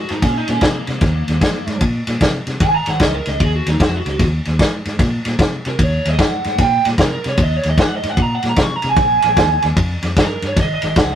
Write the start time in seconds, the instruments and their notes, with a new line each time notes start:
0.09 fingered electric bass G#2, lead electric guitar D#4, snare, ride
0.22 fingered electric bass A#2, lead electric guitar C#4, kick, snare, ride
0.38 lead electric guitar D#4
0.48 fingered electric bass A#2, lead electric guitar C#4, snare, ride
0.61 fingered electric bass C3, lead electric guitar A#3, kick, snare, ride
0.87 fingered electric bass C3, snare, ride
1.01 fingered electric bass D#2, kick, snare, ride
1.28 fingered electric bass D#2, snare, ride
1.41 fingered electric bass G#2, kick, snare, ride
1.67 fingered electric bass G#2, snare, ride
1.81 fingered electric bass A#2, kick, ride
2.07 fingered electric bass A#2, snare, ride
2.21 fingered electric bass C3, kick, snare, ride
2.47 fingered electric bass C3, snare, ride
2.60 fingered electric bass G#1, lead electric guitar G#5, kick, snare, ride
2.75 lead electric guitar A#5
2.86 fingered electric bass G#1, lead electric guitar F#5, snare, ride
3.00 fingered electric bass C#2, lead electric guitar D#5, kick, snare, ride
3.14 lead electric guitar A#4
3.26 fingered electric bass C#2, lead electric guitar D#5, snare, ride
3.40 fingered electric bass D#2, lead electric guitar G#4, kick, ride
3.56 lead electric guitar F#4
3.66 fingered electric bass D#2, lead electric guitar D#4, snare, ride
3.80 fingered electric bass F2, lead electric guitar F#4, kick, snare, ride
3.97 lead electric guitar F#4
4.06 fingered electric bass C#2, snare, ride
4.19 fingered electric bass D#2, kick, snare, ride
4.45 fingered electric bass D#2, snare, ride
4.59 fingered electric bass G#2, kick, snare, ride
4.85 fingered electric bass G#2, snare, ride
4.99 fingered electric bass A#2, kick, snare, ride
5.25 fingered electric bass A#2, snare, ride
5.39 fingered electric bass C3, kick, snare, ride
5.65 fingered electric bass C3, lead electric guitar A#4, snare, ride
5.79 fingered electric bass D#2, kick, ride
5.83 lead electric guitar C#5
6.05 fingered electric bass D#2, lead electric guitar D#5, snare, ride
6.19 kick, snare, ride
6.23 lead electric guitar F#5
6.44 fingered electric bass G#2, snare, ride
6.58 fingered electric bass A#2, lead electric guitar G5, kick, snare, ride
6.85 fingered electric bass A#2, snare, ride
6.98 fingered electric bass C3, lead electric guitar A#4, kick, snare, ride
7.24 fingered electric bass C3, snare, ride
7.29 lead electric guitar C#5
7.37 fingered electric bass D#2, kick, ride
7.42 lead electric guitar D#5
7.57 lead electric guitar C#5
7.63 fingered electric bass D#2, snare, ride
7.70 lead electric guitar D#5
7.78 lead electric guitar F#5, kick, snare, ride
7.96 lead electric guitar D#5
8.03 fingered electric bass G#2, snare, ride
8.10 lead electric guitar F#5
8.17 fingered electric bass A#2, kick, ride
8.22 lead electric guitar A#5
8.35 lead electric guitar F#5
8.42 fingered electric bass A#2, snare, ride
8.49 lead electric guitar A#5
8.56 fingered electric bass C3, kick, snare, ride
8.62 lead electric guitar C#6
8.76 lead electric guitar A#5
8.82 fingered electric bass C3, snare, ride
8.89 lead electric guitar G#5
8.96 fingered electric bass A#1, kick, snare, ride
9.22 fingered electric bass A#1, snare, ride
9.37 fingered electric bass D#2, kick, snare, ride
9.62 fingered electric bass D#2, snare, ride
9.77 fingered electric bass F2, kick, ride
10.02 fingered electric bass F2, snare, ride
10.16 fingered electric bass G2, lead electric guitar A#4, kick, snare, ride
10.42 fingered electric bass G2, snare, ride
10.47 lead electric guitar C#5
10.56 fingered electric bass G#1, kick, snare, ride
10.60 lead electric guitar D#5
10.74 lead electric guitar D#5
10.82 fingered electric bass G#1, snare, ride
10.87 lead electric guitar D#5
10.96 fingered electric bass C#2, lead electric guitar F#5, kick, snare, ride